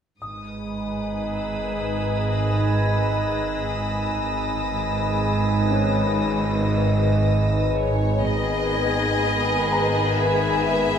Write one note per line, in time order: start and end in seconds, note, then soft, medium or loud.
0.21 4.18 G#1 soft
0.21 4.17 G#2 soft
0.21 4.18 D#4 soft
0.21 4.18 G#4 soft
0.21 4.18 B4 soft
0.21 7.68 D#6 soft
0.21 3.18 D#6 soft
1.22 7.68 E6 soft
2.24 7.69 A#6 soft
4.21 7.97 G#1 soft
4.21 8.18 G#1 medium
4.21 7.98 G#2 soft
4.21 8.18 D#4 soft
4.21 8.18 G#4 soft
4.21 8.18 B4 soft
5.70 8.17 C#4 soft
5.70 8.17 C#5 soft
7.73 8.19 C#5 soft
8.21 9.17 G#1 soft
8.21 10.99 G#1 soft
8.21 10.99 G#2 soft
8.21 10.99 D#3 soft
8.21 10.99 B3 soft
8.21 10.99 G#4 soft
8.21 10.99 B4 soft
8.21 10.22 D#5 soft
8.21 10.99 G#5 soft
9.72 10.99 A#5 soft
10.20 10.99 E5 soft